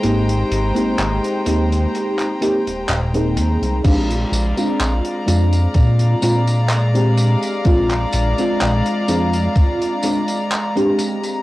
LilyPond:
<<
  \new Staff \with { instrumentName = "String section" } { \time 4/4 \key bes \mixolydian \tempo 4 = 63 <aes c'' g'' bes''>1 | <aes d'' f'' bes''>1~ | <aes d'' f'' bes''>1 | }
  \new Staff \with { instrumentName = "FM electric piano" } { \time 4/4 \key bes \mixolydian <bes c' ees' g'>8. <bes c' ees' g'>8. <bes c' ees' g'>4 <bes c' ees' g'>16 r8 <bes c' ees' aes'>8. | <aes c' d' f'>8. <aes c' d' f'>8. <aes c' d' f'>4 <aes c' d' f'>16 r8 <aes c' d' g'>8. | <aes c' d' f'>8. <aes c' d' f'>8. <aes c' d' f'>4 <aes c' d' f'>16 r8 <aes c' d' g'>8. | }
  \new Staff \with { instrumentName = "Analog synth bass" } { \clef bass \time 4/4 \key bes \mixolydian aes,,8 aes,,16 aes,,16 aes,,16 r16 ees,8 r8. ees,,16 ees,,8 ees,16 c,16 | bes,,8 bes,,16 r16 bes,,16 r16 f,8 bes,8 bes,4~ bes,16 r16 | bes,,8 bes,,16 bes,,16 bes,,16 r16 f,8 r2 | }
  \new DrumStaff \with { instrumentName = "Drums" } \drummode { \time 4/4 hh16 hh16 hh16 hh16 <hc hh>16 hh16 hh16 hh16 hh16 <hc hh>16 hh16 hh16 <hc hh>16 hh16 hh16 hh16 | <cymc hh bd tamb>16 hh16 <hh tamb>16 <hh tamb>16 <hc hh tamb>16 hh16 <hh tamb>16 <hh tamb>16 <hh bd tamb>16 hh16 <hh tamb>16 <hh tamb>16 <hc hh tamb>16 hh16 <hh tamb>16 <hh tamb>16 | <hh bd tamb>16 <hc hh>16 <hh tamb>16 <hh tamb>16 <hc hh tamb>16 hh16 <hh tamb>16 <hh tamb>16 <hh bd tamb>16 hh16 <hh tamb>16 <hh tamb>16 <hc hh tamb>16 hh16 <hh tamb>16 <hh tamb>16 | }
>>